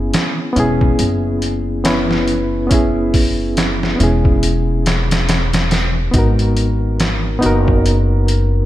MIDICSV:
0, 0, Header, 1, 4, 480
1, 0, Start_track
1, 0, Tempo, 857143
1, 1519, Time_signature, 4, 2, 24, 8
1, 4846, End_track
2, 0, Start_track
2, 0, Title_t, "Reed electric piano"
2, 0, Program_c, 0, 4
2, 0, Control_c, 0, 64, 127
2, 0, Note_on_c, 0, 59, 74
2, 0, Note_on_c, 0, 61, 71
2, 0, Note_on_c, 0, 64, 69
2, 0, Note_on_c, 0, 68, 81
2, 283, Note_off_c, 0, 59, 0
2, 291, Note_off_c, 0, 61, 0
2, 296, Note_on_c, 0, 59, 86
2, 297, Note_off_c, 0, 64, 0
2, 304, Note_off_c, 0, 68, 0
2, 312, Note_on_c, 0, 61, 72
2, 322, Note_on_c, 0, 64, 71
2, 335, Note_on_c, 0, 68, 93
2, 1003, Note_off_c, 0, 59, 0
2, 1012, Note_off_c, 0, 61, 0
2, 1016, Note_off_c, 0, 64, 0
2, 1023, Note_off_c, 0, 68, 0
2, 1031, Note_on_c, 0, 59, 75
2, 1035, Note_on_c, 0, 61, 76
2, 1042, Note_on_c, 0, 64, 76
2, 1048, Note_on_c, 0, 71, 86
2, 1488, Note_off_c, 0, 59, 0
2, 1493, Note_off_c, 0, 61, 0
2, 1494, Note_on_c, 0, 59, 71
2, 1496, Note_off_c, 0, 64, 0
2, 1499, Note_off_c, 0, 71, 0
2, 1508, Note_on_c, 0, 61, 63
2, 1523, Note_on_c, 0, 64, 64
2, 1535, Note_on_c, 0, 68, 72
2, 2203, Note_off_c, 0, 59, 0
2, 2209, Note_off_c, 0, 61, 0
2, 2217, Note_off_c, 0, 64, 0
2, 2218, Note_on_c, 0, 59, 64
2, 2223, Note_off_c, 0, 68, 0
2, 2233, Note_on_c, 0, 61, 60
2, 2244, Note_on_c, 0, 64, 58
2, 2259, Note_on_c, 0, 68, 72
2, 3404, Note_off_c, 0, 59, 0
2, 3412, Note_off_c, 0, 61, 0
2, 3417, Note_off_c, 0, 64, 0
2, 3424, Note_on_c, 0, 59, 75
2, 3425, Note_off_c, 0, 68, 0
2, 3436, Note_on_c, 0, 63, 70
2, 3446, Control_c, 0, 64, 0
2, 3451, Note_on_c, 0, 66, 73
2, 3463, Note_on_c, 0, 70, 88
2, 3540, Control_c, 0, 64, 127
2, 4127, Note_off_c, 0, 59, 0
2, 4133, Note_off_c, 0, 63, 0
2, 4136, Note_on_c, 0, 59, 84
2, 4141, Note_off_c, 0, 66, 0
2, 4147, Note_off_c, 0, 70, 0
2, 4147, Note_on_c, 0, 63, 74
2, 4163, Note_on_c, 0, 66, 81
2, 4178, Note_on_c, 0, 70, 89
2, 4844, Note_off_c, 0, 59, 0
2, 4846, Note_off_c, 0, 63, 0
2, 4846, Note_off_c, 0, 66, 0
2, 4846, Note_off_c, 0, 70, 0
2, 4846, End_track
3, 0, Start_track
3, 0, Title_t, "Upright bass"
3, 0, Program_c, 1, 32
3, 0, Note_on_c, 1, 30, 84
3, 58, Note_off_c, 1, 30, 0
3, 315, Note_on_c, 1, 28, 75
3, 533, Note_off_c, 1, 28, 0
3, 555, Note_on_c, 1, 30, 69
3, 2218, Note_off_c, 1, 30, 0
3, 2240, Note_on_c, 1, 28, 70
3, 3420, Note_off_c, 1, 28, 0
3, 3436, Note_on_c, 1, 32, 86
3, 4138, Note_off_c, 1, 32, 0
3, 4157, Note_on_c, 1, 30, 78
3, 4846, Note_off_c, 1, 30, 0
3, 4846, End_track
4, 0, Start_track
4, 0, Title_t, "Drums"
4, 76, Note_on_c, 9, 42, 74
4, 80, Note_on_c, 9, 38, 90
4, 132, Note_off_c, 9, 42, 0
4, 136, Note_off_c, 9, 38, 0
4, 316, Note_on_c, 9, 42, 62
4, 372, Note_off_c, 9, 42, 0
4, 455, Note_on_c, 9, 36, 86
4, 511, Note_off_c, 9, 36, 0
4, 554, Note_on_c, 9, 42, 78
4, 610, Note_off_c, 9, 42, 0
4, 795, Note_on_c, 9, 42, 62
4, 851, Note_off_c, 9, 42, 0
4, 1035, Note_on_c, 9, 42, 82
4, 1039, Note_on_c, 9, 38, 114
4, 1091, Note_off_c, 9, 42, 0
4, 1095, Note_off_c, 9, 38, 0
4, 1180, Note_on_c, 9, 38, 51
4, 1236, Note_off_c, 9, 38, 0
4, 1274, Note_on_c, 9, 42, 52
4, 1330, Note_off_c, 9, 42, 0
4, 1516, Note_on_c, 9, 42, 82
4, 1517, Note_on_c, 9, 36, 100
4, 1572, Note_off_c, 9, 42, 0
4, 1573, Note_off_c, 9, 36, 0
4, 1757, Note_on_c, 9, 46, 69
4, 1758, Note_on_c, 9, 36, 78
4, 1813, Note_off_c, 9, 46, 0
4, 1814, Note_off_c, 9, 36, 0
4, 1999, Note_on_c, 9, 42, 68
4, 2004, Note_on_c, 9, 38, 91
4, 2055, Note_off_c, 9, 42, 0
4, 2060, Note_off_c, 9, 38, 0
4, 2146, Note_on_c, 9, 38, 48
4, 2202, Note_off_c, 9, 38, 0
4, 2241, Note_on_c, 9, 42, 62
4, 2297, Note_off_c, 9, 42, 0
4, 2379, Note_on_c, 9, 36, 83
4, 2435, Note_off_c, 9, 36, 0
4, 2480, Note_on_c, 9, 42, 78
4, 2536, Note_off_c, 9, 42, 0
4, 2722, Note_on_c, 9, 42, 75
4, 2726, Note_on_c, 9, 38, 91
4, 2778, Note_off_c, 9, 42, 0
4, 2782, Note_off_c, 9, 38, 0
4, 2864, Note_on_c, 9, 42, 70
4, 2868, Note_on_c, 9, 38, 91
4, 2920, Note_off_c, 9, 42, 0
4, 2924, Note_off_c, 9, 38, 0
4, 2960, Note_on_c, 9, 42, 77
4, 2965, Note_on_c, 9, 38, 97
4, 3016, Note_off_c, 9, 42, 0
4, 3021, Note_off_c, 9, 38, 0
4, 3099, Note_on_c, 9, 42, 68
4, 3104, Note_on_c, 9, 38, 91
4, 3155, Note_off_c, 9, 42, 0
4, 3160, Note_off_c, 9, 38, 0
4, 3198, Note_on_c, 9, 42, 63
4, 3203, Note_on_c, 9, 38, 85
4, 3254, Note_off_c, 9, 42, 0
4, 3259, Note_off_c, 9, 38, 0
4, 3436, Note_on_c, 9, 42, 75
4, 3438, Note_on_c, 9, 36, 104
4, 3492, Note_off_c, 9, 42, 0
4, 3494, Note_off_c, 9, 36, 0
4, 3579, Note_on_c, 9, 42, 40
4, 3635, Note_off_c, 9, 42, 0
4, 3677, Note_on_c, 9, 42, 61
4, 3733, Note_off_c, 9, 42, 0
4, 3918, Note_on_c, 9, 42, 76
4, 3923, Note_on_c, 9, 38, 92
4, 3974, Note_off_c, 9, 42, 0
4, 3979, Note_off_c, 9, 38, 0
4, 4157, Note_on_c, 9, 42, 64
4, 4213, Note_off_c, 9, 42, 0
4, 4299, Note_on_c, 9, 36, 91
4, 4355, Note_off_c, 9, 36, 0
4, 4400, Note_on_c, 9, 42, 74
4, 4456, Note_off_c, 9, 42, 0
4, 4639, Note_on_c, 9, 42, 62
4, 4695, Note_off_c, 9, 42, 0
4, 4846, End_track
0, 0, End_of_file